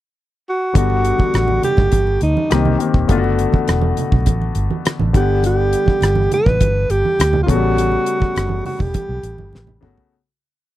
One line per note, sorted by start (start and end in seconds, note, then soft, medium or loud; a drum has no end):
0.49 0.75 F#4 medium
0.74 1.11 G1 medium
0.74 1.79 D3 medium
0.74 1.80 G3 medium
0.74 1.80 B3 medium
0.74 1.81 F#4 medium
0.74 kick medium
0.74 closed hi-hat medium
0.78 1.60 F#4 medium
0.90 muted conga soft
1.05 closed hi-hat medium
1.19 kick medium
1.19 high conga medium
1.34 1.58 A1 medium
1.34 cross-stick medium
1.34 closed hi-hat medium
1.34 muted conga soft
1.48 muted conga soft
1.48 high conga medium
1.63 2.18 G4 loud
1.63 closed hi-hat medium
1.63 low conga medium
1.77 1.90 G1 medium
1.77 kick medium
1.77 cross-stick soft
1.77 low conga medium
1.92 2.16 G1 medium
1.92 kick medium
1.92 closed hi-hat medium
1.92 muted conga soft
1.92 high conga medium
2.07 muted conga soft
2.21 2.34 D2 medium
2.21 2.77 D#4 medium
2.21 closed hi-hat medium
2.37 high conga medium
2.50 2.75 C2 medium
2.50 2.77 D#3 medium
2.50 2.77 A#3 medium
2.50 2.78 C4 medium
2.50 2.78 G4 medium
2.50 cross-stick loud
2.50 closed hi-hat medium
2.65 high conga medium
2.65 low conga medium
2.79 3.06 D#3 medium
2.79 3.06 A#3 medium
2.79 3.07 C4 medium
2.79 3.07 G4 medium
2.79 closed hi-hat medium
2.94 3.06 D#1 medium
2.94 kick medium
3.08 3.45 F#1 medium
3.08 4.14 D3 medium
3.08 4.14 A3 medium
3.08 4.15 B3 medium
3.08 3.17 F4 medium
3.08 kick loud
3.08 closed hi-hat medium
3.18 4.18 F#4 medium
3.24 muted conga soft
3.39 closed hi-hat medium
3.53 kick medium
3.53 high conga medium
3.68 3.92 E1 medium
3.68 cross-stick medium
3.68 closed hi-hat medium
3.68 muted conga soft
3.82 high conga medium
3.97 closed hi-hat medium
3.97 low conga medium
4.12 4.27 B1 medium
4.12 kick medium
4.12 low conga medium
4.26 4.50 A1 medium
4.26 kick medium
4.26 closed hi-hat medium
4.26 muted conga soft
4.26 high conga medium
4.42 muted conga soft
4.55 4.67 G1 medium
4.55 closed hi-hat medium
4.70 high conga medium
4.85 cross-stick loud
4.85 closed hi-hat medium
4.99 5.12 A1 medium
4.99 muted conga soft
4.99 high conga medium
4.99 low conga medium
5.13 5.74 G1 medium
5.13 6.18 D3 medium
5.13 6.19 G3 medium
5.13 6.19 B3 medium
5.13 5.42 G4 medium
5.13 6.20 F#5 medium
5.13 kick medium
5.13 closed hi-hat medium
5.43 6.29 G4 medium
5.43 closed hi-hat medium
5.43 muted conga soft
5.73 closed hi-hat medium
5.86 kick medium
5.86 high conga medium
6.01 6.26 G1 medium
6.01 cross-stick medium
6.01 closed hi-hat medium
6.01 muted conga soft
6.15 muted conga soft
6.15 high conga medium
6.32 6.92 B4 loud
6.32 closed hi-hat medium
6.32 low conga medium
6.46 6.58 A1 medium
6.46 kick medium
6.46 cross-stick soft
6.46 low conga medium
6.61 6.84 G1 medium
6.61 kick medium
6.61 closed hi-hat medium
6.61 high conga medium
6.90 7.02 G1 medium
6.90 7.42 G4 medium
6.90 closed hi-hat medium
7.05 high conga medium
7.19 7.43 D2 medium
7.19 cross-stick loud
7.19 closed hi-hat medium
7.19 muted conga soft
7.33 muted conga soft
7.33 high conga medium
7.33 low conga medium
7.43 8.52 C#3 medium
7.43 7.52 F4 medium
7.47 7.95 A1 medium
7.47 8.53 A3 medium
7.47 8.53 B3 medium
7.47 7.55 F#4 medium
7.47 8.65 F#4 medium
7.47 kick medium
7.47 closed hi-hat medium
7.56 8.57 G3 medium
7.77 closed hi-hat medium
7.77 muted conga soft
7.92 muted conga soft
8.06 closed hi-hat medium
8.20 kick medium
8.20 high conga medium
8.35 8.60 F#1 medium
8.35 cross-stick medium
8.35 closed hi-hat medium
8.35 muted conga soft
8.49 high conga medium
8.65 8.83 F#4 medium
8.65 open hi-hat soft
8.65 low conga medium
8.79 8.92 E1 medium
8.79 9.83 G4 medium
8.79 kick medium
8.79 low conga medium
8.94 kick loud
8.94 closed hi-hat medium
8.94 high conga medium
9.09 9.21 B1 medium
9.23 9.35 A1 medium
9.23 closed hi-hat medium
9.38 9.50 G1 medium
9.38 high conga medium
9.53 9.77 A1 medium
9.53 snare soft
9.53 muted conga soft
9.67 muted conga soft
9.67 high conga medium
9.67 low conga medium
9.81 9.94 G1 medium
9.81 10.08 C#3 medium
9.81 10.08 A3 medium
9.81 10.09 B3 medium
9.81 10.09 F#4 medium
9.81 mid tom medium
9.98 floor tom medium